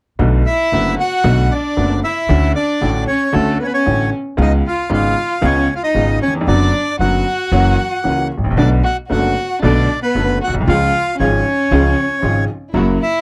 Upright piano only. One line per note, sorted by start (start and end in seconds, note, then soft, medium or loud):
0.19 0.41 B1 medium
0.19 0.41 B2 medium
0.19 0.41 D3 medium
0.19 0.41 A3 soft
0.19 0.41 B3 soft
0.19 0.41 F#4 medium
0.73 0.95 F#1 soft
0.73 0.95 F#2 soft
0.73 0.94 D3 soft
0.73 0.94 A3 soft
0.73 0.95 B3 soft
0.73 0.95 F#4 soft
1.24 1.46 B1 medium
1.24 1.46 B2 medium
1.24 1.46 D3 medium
1.24 1.46 A3 medium
1.24 1.47 B3 medium
1.24 1.46 F#4 medium
1.76 1.99 F#1 soft
1.76 1.99 F#2 soft
1.76 1.99 D3 soft
1.76 1.99 A3 soft
1.76 1.99 B3 soft
1.76 1.99 F#4 soft
2.29 2.51 D2 medium
2.29 2.51 D3 medium
2.29 2.51 A3 soft
2.29 2.52 C#4 soft
2.29 2.52 F#4 medium
2.81 3.04 A1 soft
2.81 3.04 A2 soft
2.81 3.04 D3 soft
2.81 3.04 A3 soft
2.81 3.04 C#4 soft
2.81 3.04 F#4 soft
3.32 3.56 D2 medium
3.32 3.56 D3 medium
3.32 3.56 A3 medium
3.32 3.56 C#4 medium
3.32 3.56 F#4 medium
3.86 4.08 A1 soft
3.86 4.08 A2 soft
3.86 4.08 D3 soft
3.86 4.08 A3 soft
3.86 4.09 C#4 soft
3.86 4.08 F#4 soft
4.37 4.60 C#2 medium
4.37 4.60 C#3 medium
4.37 4.60 G#3 medium
4.37 4.60 B3 medium
4.37 4.60 F4 medium
4.89 5.12 G#1 medium
4.89 5.12 G#2 soft
4.89 5.12 C#3 soft
4.89 5.12 G#3 soft
4.89 5.12 B3 soft
4.89 5.13 F4 soft
5.41 5.65 C#2 medium
5.41 5.64 C#3 medium
5.41 5.65 G#3 medium
5.41 5.65 B3 medium
5.41 5.65 F4 medium
5.94 6.17 G#1 soft
5.94 6.17 G#2 soft
5.94 6.17 C#3 soft
5.94 6.17 G#3 soft
5.94 6.17 B3 soft
5.94 6.17 F4 soft
6.28 6.34 D#2 soft
6.35 6.41 E2 medium
6.41 6.47 F2 medium
6.48 6.70 F#2 medium
6.48 6.70 D3 medium
6.48 6.70 F#3 medium
6.48 6.70 B3 soft
6.48 6.70 F#4 medium
7.00 7.22 F#2 soft
7.00 7.22 D3 soft
7.00 7.22 F#3 soft
7.00 7.22 B3 soft
7.00 7.22 F#4 soft
7.52 7.74 F#2 medium
7.52 7.74 E3 medium
7.52 7.74 F#3 medium
7.52 7.74 A#3 medium
7.52 7.75 C#4 medium
7.52 7.75 F#4 medium
8.04 8.27 C#2 soft
8.04 8.27 C#3 soft
8.04 8.26 E3 soft
8.04 8.27 A#3 soft
8.04 8.27 C#4 soft
8.04 8.27 F#4 soft
8.38 8.44 G#1 soft
8.44 8.51 A1 soft
8.50 8.57 A#1 medium
8.57 8.80 B1 medium
8.57 8.80 B2 medium
8.57 8.79 D3 medium
8.57 8.79 A3 soft
8.57 8.80 B3 soft
8.57 8.80 F#4 medium
9.10 9.32 F#1 soft
9.10 9.32 F#2 medium
9.10 9.32 D3 soft
9.10 9.32 A3 soft
9.10 9.32 B3 soft
9.10 9.32 F#4 soft
9.62 9.85 B1 medium
9.62 9.85 B2 medium
9.62 9.84 D3 medium
9.62 9.85 A3 medium
9.62 9.85 B3 medium
9.62 9.85 F#4 medium
10.15 10.37 F#1 soft
10.15 10.37 F#2 soft
10.15 10.37 D3 soft
10.15 10.37 A3 soft
10.15 10.37 B3 soft
10.15 10.38 F#4 soft
10.47 10.54 A#1 soft
10.54 10.61 B1 medium
10.60 10.67 C2 medium
10.68 10.89 C#2 medium
10.68 10.89 C#3 medium
10.68 10.90 F3 soft
10.68 10.89 G#3 soft
10.68 10.89 F4 medium
11.20 11.41 G#1 medium
11.20 11.41 G#2 soft
11.20 11.41 C#3 soft
11.20 11.41 F3 soft
11.20 11.41 G#3 soft
11.20 11.42 F4 soft
11.72 11.93 C#2 medium
11.72 11.93 C#3 medium
11.72 11.93 F3 medium
11.72 11.93 G#3 medium
11.72 11.93 F4 medium
12.22 12.44 G#1 soft
12.22 12.44 G#2 soft
12.22 12.44 C#3 soft
12.22 12.44 F3 soft
12.22 12.45 G#3 soft
12.22 12.45 F4 soft
12.74 12.96 F#2 medium
12.74 12.96 C#3 medium
12.74 12.96 F#3 medium
12.74 12.96 A#3 soft
12.74 12.96 E4 medium